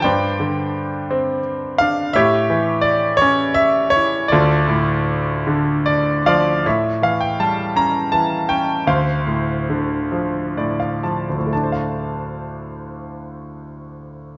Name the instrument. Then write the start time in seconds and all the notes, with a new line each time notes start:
grand piano
0.02 G2 C5 D5 G5
0.40 D3
1.11 C4
1.78 D4 F5
2.13 A2 G4 C#5 E5
2.50 E3
2.81 D5
3.17 C#5
3.22 C#4
3.54 E5
3.90 C#5
3.97 E4
4.28 F4 A4 D5
4.33 D2
4.68 A2
5.47 D3
5.86 D5
6.26 F3 D5 F5
6.66 A2 C#5 E5
7.02 E3 F5
7.21 G5
7.40 G3 A5
7.76 C#4 A#5
8.12 E3 A5
8.49 C#4 G5
8.87 D2 C5 F5
9.27 A2
9.70 D3
10.12 F3
10.57 A2 D5
10.80 F5
11.04 F3 A5
11.30 D2
11.38 A2
11.47 A3
11.53 D4 A5
11.63 C5
11.72 F5